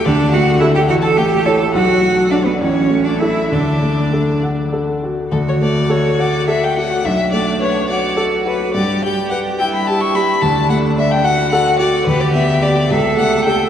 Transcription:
<<
  \new Staff \with { instrumentName = "Violin" } { \time 6/8 \key d \major \tempo 4. = 71 d''8 fis''8 e''16 g''16 fis''16 a''16 g''8 a''8 | fis''4 d''16 b'16 cis''8. d''16 e''8 | d''4. r4. | a'16 cis''16 d''8 cis''8 d''8 e''16 g''16 fis''8 |
e''8 d''8 cis''8 d''8 d''8 b'8 | d''8 g''8 fis''8 g''16 b''16 a''16 cis'''16 b''8 | a''8 fis''8 e''16 g''16 fis''8 fis''8 d''8 | b'16 d''16 e''8 d''8 e''8 fis''8 g''8 | }
  \new Staff \with { instrumentName = "Cello" } { \time 6/8 \key d \major d'8 fis'8 e'16 g'16 fis'16 a'16 g'8 a'8 | fis'4 d'16 b16 cis'8. d'16 e'8 | d'4. r4. | fis'2. |
d'4. fis'4. | g'4. e'4. | d'4. fis'4. | g'4. a'4. | }
  \new Staff \with { instrumentName = "Grand piano" } { \time 6/8 \key d \major d,8 a8 <fis' a'>8 a,,8 a8 <e' cis''>8 | b,,8 fis8 <d' d''>8 a,,8 a8 <e' a'>8 | d,8 a8 a'8 fis''8 a'8 fis'8 | d,8 a8 a'8 fis''8 a'8 fis'8 |
b,,8 a8 b'8 fis''8 a'8 fis'8 | g,8 g8 b'8 g''8 g'8 g8 | d,8 a8 d''8 fis''8 a'8 fis'8 | d,8 b8 <g' d''>8 cis,8 a8 <g' a'>8 | }
>>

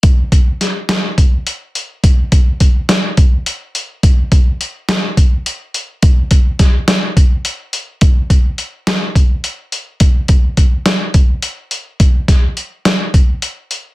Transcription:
\new DrumStaff \with { instrumentName = "Drums" } \drummode { \time 7/8 \tempo 4 = 105 <hh bd>8 <hh bd>8 <hh sn>8 <hh sn>8 <hh bd>8 hh8 hh8 | <hh bd>8 <hh bd>8 <hh bd>8 <hh sn>8 <hh bd>8 hh8 hh8 | <hh bd>8 <hh bd>8 hh8 <hh sn>8 <hh bd>8 hh8 hh8 | <hh bd>8 <hh bd>8 <hh bd sn>8 <hh sn>8 <hh bd>8 hh8 hh8 |
<hh bd>8 <hh bd>8 hh8 <hh sn>8 <hh bd>8 hh8 hh8 | <hh bd>8 <hh bd>8 <hh bd>8 <hh sn>8 <hh bd>8 hh8 hh8 | <hh bd>8 <hh bd sn>8 hh8 <hh sn>8 <hh bd>8 hh8 hh8 | }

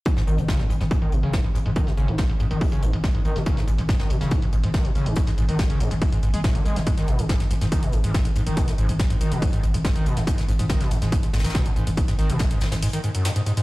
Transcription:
<<
  \new Staff \with { instrumentName = "Acid bass" } { \clef bass \time 4/4 \key gis \minor \tempo 4 = 141 gis,16 gis,16 dis16 b,16 cis16 gis,16 gis,16 gis,16 gis,16 dis16 b,16 cis16 gis,16 gis,16 gis,16 gis,16 | dis16 b,16 cis16 gis,16 r16 gis,16 gis,16 dis16 b,16 cis16 gis,16 gis,16 gis,16 gis,16 dis16 b,16 | cis16 gis,16 gis,16 gis,16 gis,16 dis16 b,16 cis16 gis,16 gis,16 gis,16 gis,16 dis16 b,16 cis16 gis,16 | gis,16 gis,16 gis,16 dis16 b,16 cis16 gis,16 gis,16 gis,16 gis,16 gis,16 gis16 a,16 dis16 gis16 gis,16 |
gis,16 dis16 b,16 gis,16 gis,16 gis,16 gis,16 gis,16 dis16 b,16 gis,16 gis,16 r16 gis,16 gis,16 dis16 | b,16 gis,16 gis,16 gis,16 gis,16 gis,16 dis16 b,16 gis,16 gis,16 gis,16 gis,16 gis,16 dis16 b,16 gis,16 | gis,16 gis,16 gis,16 gis,16 dis16 b,16 gis,16 gis,16 r16 gis,16 gis,16 dis16 b,16 gis,16 gis,16 gis,16 | gis,16 gis,16 dis16 b,16 gis,16 gis,16 gis,16 gis,16 gis,16 dis16 gis,16 fis,16 gis,16 gis,16 gis,16 gis,16 | }
  \new Staff \with { instrumentName = "808-style bass" } { \clef bass \time 4/4 \key gis \minor r8 gis,,16 gis,,16 r8 gis,,16 gis,,16 r8 gis,,16 gis,,16 r8 gis,,16 gis,,16 | r8 gis,,16 gis,,16 r8 gis,,16 gis,,16 r8 gis,,16 gis,,16 r8 gis,,16 gis,,16 | r8 gis,,16 gis,,16 r8 gis,,16 gis,,16 r8 gis,,16 gis,,16 r8 gis,,16 gis,,16 | r8 gis,,16 gis,,16 r8 gis,,16 gis,,16 r8 gis,,16 gis,,16 r8 gis,,16 gis,,16 |
r8 gis,,16 gis,,16 r8 gis,,16 gis,,16 r8 gis,,16 gis,,16 r8 gis,,16 gis,,16 | r8 gis,,16 gis,,16 r8 gis,,16 gis,,16 r8 gis,,16 gis,,16 r8 gis,,16 gis,,16 | r8 gis,,16 gis,,16 r8 gis,,16 gis,,16 r8 gis,,16 gis,,16 r8 gis,,16 gis,,16 | r8 gis,,16 gis,,16 r8 gis,,16 gis,,16 r2 | }
  \new DrumStaff \with { instrumentName = "Drums" } \drummode { \time 4/4 <hh bd>16 <hh sn>16 hh16 hh16 <hh bd sn>16 <hh sn>16 hh16 <hh sn>16 <hh bd>16 hh16 hh16 hh16 <hh bd sn>16 hh16 hh16 hh16 | <hh bd>16 <hh sn>16 hh16 hh16 <hh bd sn>16 hh16 hh16 hh16 <hh hho bd>16 hh16 hh16 hh16 <hh bd sn>16 hh16 hh16 <hh sn>16 | <hh bd>16 <hh sn>16 hh16 hh16 <hh bd sn>16 <hh sn>16 hh16 <hh sn>16 <hh bd>16 hh16 hh16 hh16 <hh bd sn>16 hh16 hh16 hh16 | <hh bd>16 <hh sn>16 hh16 hh16 <hh bd sn>16 hh16 hh16 hh16 <hh hho bd>16 hh16 hh16 hh16 <hh bd sn>16 hh16 hh16 <hh sn>16 |
<hh bd>16 <hh sn>16 hh16 hh16 <hh bd sn>16 <hh sn>16 hh16 <hh sn>16 <hh bd>16 hh16 hh16 hh16 <hh bd sn>16 hh16 hh16 hh16 | <hh bd>16 <hh sn>16 hh16 hh16 <hh bd sn>16 hh16 hh16 hh16 <hh hho bd>16 hh16 hh16 hh16 <hh bd sn>16 hh16 hh16 <hh sn>16 | <hh bd>16 <hh sn>16 hh16 hh16 <hh bd sn>16 <hh sn>16 hh16 <hh sn>16 <hh bd>16 hh16 <hh sn>32 <hh sn>32 <hh sn>32 <hh sn>32 <hh bd sn>16 hh16 hh16 hh16 | <hh bd>16 <hh sn>16 hh16 hh16 <hh bd sn>16 hh16 <hh sn>16 <hh sn>16 <hh hho>16 hh16 hh16 hh16 <hh sn>16 hh16 hh16 <hh sn>16 | }
>>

